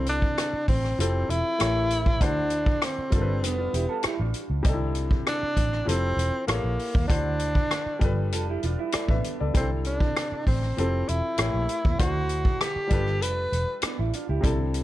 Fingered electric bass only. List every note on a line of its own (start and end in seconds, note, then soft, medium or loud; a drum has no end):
0.00 0.25 C2 medium
0.53 muted fingered electric bass stroke soft
0.68 0.93 A1 medium
0.99 1.23 F1 medium
1.29 1.41 E1 medium
1.61 2.21 A1 medium
2.21 2.70 D2 medium
2.98 muted fingered electric bass stroke soft
3.13 3.43 G1 medium
3.43 3.67 F1 medium
3.74 3.86 E1 medium
4.05 muted fingered electric bass stroke soft
4.20 4.32 A1 medium
4.50 4.62 C#2 medium
4.65 5.14 C2 loud
5.43 muted fingered electric bass stroke soft
5.57 5.81 A1 medium
5.87 6.12 F1 medium
6.16 6.29 E1 medium
6.48 6.61 A1 medium
6.64 6.76 A#1 medium
6.95 7.07 D#2 medium
7.10 7.59 D2 medium
7.86 muted fingered electric bass stroke soft
8.02 8.32 G1 medium
8.32 8.56 F1 medium
8.64 8.76 E1 medium
8.95 muted fingered electric bass stroke soft
9.08 9.21 A1 medium
9.41 9.53 C#2 medium
9.55 10.03 C2 medium
10.32 muted fingered electric bass stroke soft
10.47 10.71 A1 medium
10.78 11.02 F1 medium
11.09 11.21 E1 medium
11.39 11.50 A1 medium
11.54 11.66 A#1 medium
11.85 11.97 D#2 medium
12.00 12.48 D2 medium
12.76 muted fingered electric bass stroke soft
12.91 13.22 G1 medium
13.22 13.46 F1 medium
13.52 13.64 E1 medium
13.83 muted fingered electric bass stroke soft
13.99 14.11 A1 medium
14.29 14.41 C#2 medium
14.43 14.84 C2 medium